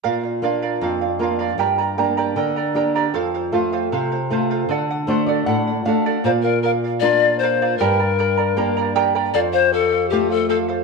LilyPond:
<<
  \new Staff \with { instrumentName = "Charango" } { \time 2/4 \key bes \major \tempo 4 = 78 <bes' d'' f''>16 <d'' f''>16 <bes' d'' f''>16 <bes' d'' f''>16 <bes' d'' f''>16 <d'' f''>16 <bes' d'' f''>16 <bes' d'' f''>16 | <g' bes' d'' g'' bes''>16 <bes' d'' bes''>16 <bes' d'' g'' bes''>16 <g' bes' d'' g'' bes''>16 <bes' d'' g'' bes''>16 <bes' d'' bes''>16 <bes' d'' g'' bes''>16 <g' bes' d'' g'' bes''>16 | <a' c'' f''>16 <c'' f''>16 <a' c'' f''>16 <a' c'' f''>16 <a' c'' f''>16 <c'' f''>16 <a' c'' f''>16 <a' c'' f''>16 | <a' d'' fis''>16 <d'' fis''>16 <a' d'' fis''>16 <a' d'' fis''>16 <a' d'' fis''>16 <d'' fis''>16 <a' d'' fis''>16 <a' d'' fis''>16 |
<bes' d'' f''>16 <d'' f''>16 <bes' d'' f''>16 <d'' f''>16 <bes' d'' f''>16 <d'' f''>16 <bes' d'' f''>16 <bes' d'' f''>16 | <g' bes' d'' g'' bes''>16 <bes' d'' bes''>16 <bes' d'' g'' bes''>16 <bes' d'' bes''>16 <bes' d'' g'' bes''>16 <bes' d'' bes''>16 <g' bes' d'' g'' bes''>16 <g' bes' d'' g'' bes''>16 | <a' c'' f''>16 <c'' f''>16 <a' c'' f''>16 <c'' f''>16 <a' c'' f''>16 <c'' f''>16 <a' c'' f''>16 <a' c'' f''>16 | }
  \new Staff \with { instrumentName = "Pan flute" } { \time 2/4 \key bes \major r2 | r2 | r2 | r2 |
c''16 bes'16 bes'8 d''8 c''8 | bes'4. r8 | d''16 c''16 a'8 g'16 a'16 a'8 | }
  \new Staff \with { instrumentName = "Nylon-string guitar" } { \time 2/4 \key bes \major << { r2 | r2 | r2 | r8 c''16 d''16 fis''8 f''8 |
r2 | r2 | r2 | } \\ { bes,8 <bes d' f'>8 f,8 <bes d' f'>8 | g,8 <bes d' g'>8 d8 <bes d' g'>8 | f,8 <a c' f'>8 c8 <a c' f'>8 | d8 <a d' fis'>8 a,8 <a d' fis'>8 |
bes,4 <bes d' f'>4 | g,4 <bes d' g'>4 | f,4 <a c' f'>4 | } >> }
>>